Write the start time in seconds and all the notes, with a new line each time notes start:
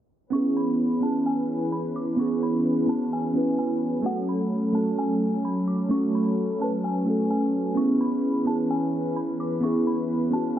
0.30 E3 B3 C#4 E4 B4 C#6
0.35 G#4
0.57 B5
1.00 B3 C#4 E4 A5
1.05 G#4
1.26 G#5
1.72 B5
1.96 D6
2.16 B3 C#4 E4 C#6
2.21 G#4
2.43 B5
2.86 B3 C#4 E4 A5
2.91 F#4
3.13 G#5
3.33 B3 C#4 E4
3.38 B4
3.58 G#5
4.02 F#3 A3 C#4 F#4 A4 F#5
4.07 A4
4.29 B5
4.72 A3 C#4 F#4 A5
4.77 A4
4.98 G#5
5.45 B5
5.67 D6
5.89 A3 C#4 F#4 C#6
5.94 A4
6.15 B5
6.58 A3 C#4 F#4 A5
6.63 B4
6.84 G#5
7.05 A3 C#4 F#4
7.10 A4
7.30 G#5
7.74 E3 B3 C#4 E4 B4 C#6
7.79 G#4
8.01 B5
8.44 B3 C#4 E4 A5
8.49 G#4
8.70 G#5
9.16 B5
9.40 D6
9.60 B3 C#4 E4 C#6
9.65 G#4
9.87 B5
10.30 B3 C#4 E4 A5
10.35 F#4